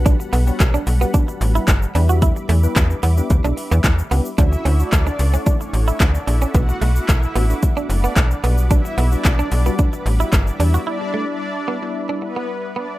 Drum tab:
HH |x-o-x-o-x-o-x-o-|x-o-x-o-x-o-x-o-|x-o-x-o-x-o-x-o-|x-o-x-o-x-o-x-o-|
SH |xxxxxxxxxxxxxxxx|xxxxxxxxxxxxxxxx|xxxxxxxxxxxxxxxx|xxxxxxxxxxxxxxxx|
CP |----x-------x---|----x-------x---|----x-------x---|----x-------x---|
BD |o---o---o---o---|o---o---o---o---|o---o---o---o---|o---o---o---o---|

HH |x-o-x-o-x-o-x-o-|----------------|
SH |xxxxxxxxxxxxxxxx|----------------|
CP |----x-------x---|----------------|
BD |o---o---o---o---|----------------|